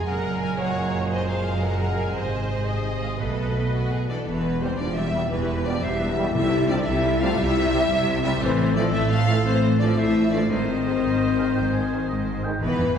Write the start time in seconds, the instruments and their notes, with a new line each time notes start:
0.06 double bass section F#1, cello section F#2, trombone section A#2 G#3, violin section G#4 A#4 F#5, viola section A#4
0.42 violin section G#5
0.59 viola section C#5, violin section F#5
0.94 violin section C#5
1.11 viola section C5, violin section D#5
1.28 violin section F5
1.63 viola section A#4, violin section F#5
1.99 violin section G#5
2.15 double bass section G#1, cello section G#2, trombone section C3, viola section C5, violin section C5 D#5
2.50 violin section D#5
2.67 violin section C5, viola section D#5
3.03 violin section F5
3.20 double bass section B1, cello section B2, trombone section B2 A3, violin section A4 B4 D#5, viola section B4
3.73 violin section F#4
3.92 violin section G#4
4.08 viola section E3, french horn section D4, violin section A4 D5, flute D5
4.26 double bass section E1, cello section E2, viola section E3, french horn section B3, violin section B4, flute B4
4.61 trombone section B2 G3, viola section E3, french horn section C4, violin section C5, flute C5
4.78 double bass section E1, cello section E2, viola section F3, french horn section D4, violin section D5, flute D5
4.95 viola section G3, french horn section E4, flute E5, violin section E5
5.13 trombone section B2 G3
5.31 double bass section E1, cello section E2, viola section E3, french horn section B3, clarinet G4, flute B4, violin section B4
5.65 trombone section B2 G3, viola section F3, french horn section D4, violin section D5, flute D5
5.82 double bass section E1, cello section E2, viola section G3, french horn section E4, clarinet C5, flute E5, violin section E5
6.00 clarinet B4
6.17 trombone section B2 G3, clarinet A4
6.34 double bass section C2, cello section C3, timpani C3, viola section G3, french horn section E4, flute E5, violin section E5
6.68 trombone section C3 G3, viola section F3, french horn section D4, violin section D5, flute D5
6.85 double bass section C2, cello section C3, viola section G3, french horn section E4, violin section E5, flute E5
7.21 trombone section C3 G3, viola section A3, french horn section F4, flute F5, violin section F5
7.37 double bass section C2, cello section C3, viola section G3, french horn section E4, clarinet G4, violin section E5, flute E5
7.72 trombone section C3 G3
7.89 double bass section C2, cello section C3
8.22 trombone section C3 G3, viola section G3, french horn section E4, violin section E5, flute E5
8.40 double bass section A1, cello section A2, viola section E3, french horn section C4, clarinet A4, violin section C5, flute C5
8.75 trombone section E3 A3, viola section F3, french horn section D4, violin section D5, flute D5
8.92 double bass section A1, cello section A2, viola section A3, french horn section E4, flute E5, violin section E5
9.09 viola section A3, french horn section F4, flute F5, violin section F5
9.27 trombone section E3 A3
9.44 double bass section A1, cello section A2, viola section E3, french horn section C4, violin section C5, flute C5
9.79 trombone section E3 A3, viola section F3, french horn section D4, flute D5, violin section D5
9.96 double bass section A1, cello section A2, viola section A3, french horn section E4, clarinet C5, violin section E5, flute E5
10.31 trombone section E3 A3, viola section F3, french horn section D4, flute D5, violin section D5
10.49 double bass section G#1, cello section G#2, viola section D#3, french horn section C4, violin section C5, flute C5, clarinet D#5
10.84 trombone section D#3 G#3
11.03 double bass section G#1, cello section G#2, oboe D#5
11.37 trombone section D#3 G#3, oboe F5
11.56 double bass section G#1, cello section G#2, oboe G5
11.73 oboe G#5
11.90 trombone section D#3 G#3
12.08 double bass section G#1, cello section G#2, oboe D#5
12.44 trombone section D#3 G#3, oboe G5
12.60 double bass section E1, cello section E2, viola section E3, french horn section B3, flute B4, violin section B4
12.78 double bass section E1, cello section E2
12.94 viola section E3, violin section C5